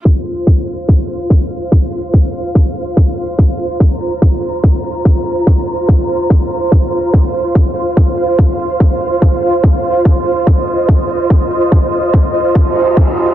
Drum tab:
HH |x-xxx-xxx-xxx-xx|x-xxx-xxx-xxx-xx|x-xxx-xxx-xxx-xx|x-xxx-xxx-xxx-xx|
BD |o---o---o---o---|o---o---o---o---|o---o---o---o---|o---o---o---o---|

HH |xxxxx-xxx-xxx-xx|x-xxx-xxx-xxxxxx|xxxxxxxxxxxxxxxx|xxxxxxxxxxxxxxxx|
BD |o---o---o---o---|o---o---o---o---|o---o---o---o---|o---o---o---o---|